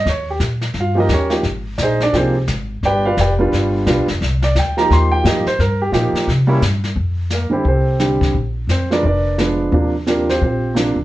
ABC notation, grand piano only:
X:1
M:4/4
L:1/8
Q:"Swing" 1/4=174
K:Cm
V:1 name="Grand piano"
_d G z2 [Ff] [EBe] [_DGBd] z | z2 [EAcde] [Dd] [CGAc] z3 | [G=Bdg] [FBdf] [GBdg] z4 z | z d g b c' g e c |
B G z6 | z2 [B,B] [G=Ac] [CGAc]2 z2 | z2 [Cc] [B_cd] [DBcd]2 z2 | z2 [FGB] [CFGc] [CFGc]2 z2 |]
V:2 name="Grand piano"
z4 z [F,B,EG] z [F,B,EG] | z4 [F,B,EG] z3 | z3 [G,=B,DF]3 [G,B,DF] z | z3 [F,B,EG]3 [F,B,EG] z |
z2 [F,B,EG]2 z [G,B,_D=E] z2 | z3 [D,G,C=E] z2 [D,G,CG]2 | z3 [F,A,_CD] z2 [F,A,CD]2 | [C,F,B,D] z [C,F,B,D] z3 [C,F,B,D] z |]